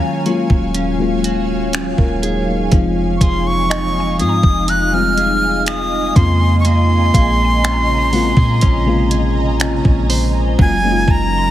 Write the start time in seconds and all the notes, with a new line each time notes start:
Already playing: D#3 F#3 G#3 A#3 C#4 F4 F#4 C#5 F5 G#5 A#5
0.26 F#3 G#3 A#3 C#4 F4 F#4, closed hi-hat
0.50 D#1, kick
0.74 C#4, closed hi-hat
0.99 F#3 G#3 A#3 C#4 F4
1.24 F#4, closed hi-hat
1.73 C#4 F#4, finger snap, closed hi-hat
1.98 D#1 F4 A#4, kick
2.22 D#4 G#4, closed hi-hat
2.48 A#3 D#4
2.71 F1 F3 G#3 C4 D#4 F4 D#5 G#5, kick, closed hi-hat
3.17 C#6
3.21 F1 G#4 C6, kick, closed hi-hat
3.47 C#6
3.70 D#4 D#5, finger snap, closed hi-hat
4.00 G#5
4.19 G#2 F3 G#3 C4 D#4 F4 G#4 D#6, closed hi-hat
4.29 A#5
4.43 F1, kick
4.68 D#4 F#6, closed hi-hat
4.92 F3 G3 C4 D#4 F4 F6
5.00 G#3
5.17 G#4, closed hi-hat
5.66 D#4 D#6, finger snap, closed hi-hat
6.15 F2 C#3 G#3 A#3 C4 F4 A#5 C6, kick, closed hi-hat
6.60 C#6
6.65 A#3 C6, closed hi-hat
7.14 A#1 G#4 F5, kick, closed hi-hat
7.44 G#5
7.63 C#4, finger snap, closed hi-hat
7.73 A#5
8.12 C#3 G#3 A#3 C4 F4 F#4, open hi-hat
8.37 A#2 G#4, kick
8.61 A#1 C#4, kick, closed hi-hat
8.86 C3 G#3 A#3 C4 F4
8.92 C#3
9.11 G#4, closed hi-hat
9.60 C#4, finger snap, closed hi-hat
9.85 A#1, kick
10.10 C5, open hi-hat
10.58 F#1 F#3 G#3 A#3 C#4 F4 A#4 G#5, kick
10.83 F#3 G#3 A#3 C#4 D#4
10.92 F4
11.08 F#1 A#3 G#5 A#5, kick
11.38 C6